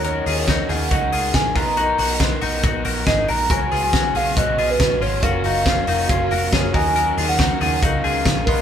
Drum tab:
HH |xoxoxoxo|xoxoxoxo|xoxoxoxo|xoxoxoxo|
SD |--o---o-|--o---o-|--o---o-|--o---o-|
BD |--o-o-oo|--o-o-o-|o-o-o-o-|o-o-o-oo|

HH |xoxoxoxo|
SD |--o---o-|
BD |--o-o-oo|